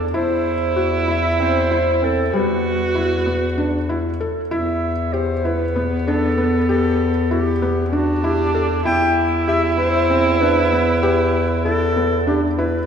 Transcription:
Already playing: E2 D4
0.14 E2 E4 C5
0.76 F#4
1.08 E4 E5
1.40 C4 C5
1.71 E4
2.02 C4 A4
2.32 E2 G3 F#4 B4
2.95 E4
3.26 B3
3.57 D4
3.89 E4
4.20 A4
4.50 E2 B3 E4 E5
5.13 G4 C5
5.45 E4 B4
5.76 B3
6.07 D4 A4
6.38 B3
6.69 G4 A4
7.31 E4 G4
7.62 B3
7.93 D4 F#4
8.24 E4 G4
8.55 A4
8.85 E2 E4 G5
9.48 G4 E5
9.78 E4 C5
10.10 C4
10.40 D4 B4
10.72 B3
11.03 G4 B4
11.65 E4 A4
11.96 B3
12.27 D4 G4
12.58 E4 B4

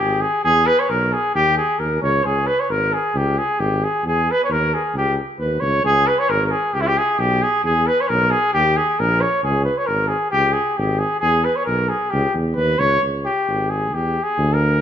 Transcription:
0.00 G#1 G4
0.21 G#4
0.44 E2 G#4
0.66 B4
0.79 C#5
0.89 B1 A#4
1.13 G#4
1.34 D#2 G4
1.57 G#4
1.79 D#2 A#4
2.02 C#2 C#5
2.24 C#2 G#4
2.46 B4
2.60 C#5
2.69 G#1 A#4
2.93 G#4
3.14 C#2 G4
3.38 G#4
3.59 G#1 G4
3.84 G#4
4.04 E2 G#4
4.31 B4
4.44 C#5
4.49 D#2 A#4
4.74 G#4
4.94 C#2 G4
5.38 D#2 B4
5.60 C#2 C#5
5.84 C#2 G#4
6.07 B4
6.19 C#5
6.28 G#1 A#4
6.46 A#4
6.51 G#4
6.74 C#2 G4
6.81 E4
6.87 G4
6.98 G#4
7.18 B1 G4
7.42 G#4
7.64 E2 G#4
7.87 B4
8.01 C#5
8.08 B1 A#4
8.31 G#4
8.53 D#2 G4
8.77 G#4
8.99 A#1 A#4
9.21 C#5
9.43 C#2 G#4
9.64 B4
9.77 C#5
9.86 G#1 A#4
10.08 G#4
10.31 C#2 G4
10.52 G#4
10.77 G#1 G4
10.98 G#4
11.20 E2 G#4
11.44 B4
11.56 C#5
11.65 B1 A#4
11.89 G#4
12.10 C#2 G4
12.34 E2
12.55 D#2 B4
12.78 C#2 C#5
13.02 C#2
13.25 G4
13.48 G#1
13.70 G#4
13.93 E2 G4
14.23 G#4
14.38 D2
14.54 A#4

